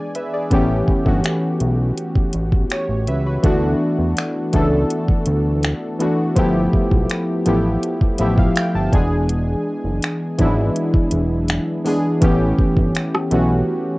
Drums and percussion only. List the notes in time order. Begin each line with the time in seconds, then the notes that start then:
0.15 closed hi-hat
0.51 kick, closed hi-hat
0.88 kick
1.06 kick
1.24 finger snap, closed hi-hat
1.60 closed hi-hat
1.98 closed hi-hat
2.16 kick
2.33 closed hi-hat
2.52 kick
2.70 finger snap, closed hi-hat
3.08 closed hi-hat
3.44 kick, closed hi-hat
4.17 finger snap, closed hi-hat
4.53 kick, closed hi-hat
4.90 closed hi-hat
5.08 kick
5.26 closed hi-hat
5.63 finger snap, closed hi-hat
6.00 closed hi-hat
6.36 kick, closed hi-hat
6.73 kick
6.91 kick
7.10 finger snap, closed hi-hat
7.46 closed hi-hat
7.83 closed hi-hat
8.01 kick
8.18 closed hi-hat
8.38 kick
8.56 finger snap, closed hi-hat
8.93 kick, closed hi-hat
9.29 closed hi-hat
10.02 finger snap, closed hi-hat
10.39 kick, closed hi-hat
10.76 closed hi-hat
10.94 kick
11.11 closed hi-hat
11.48 finger snap, closed hi-hat
11.86 open hi-hat
12.22 kick, closed hi-hat
12.59 kick
12.77 kick
12.95 finger snap, closed hi-hat
13.15 cross-stick
13.31 closed hi-hat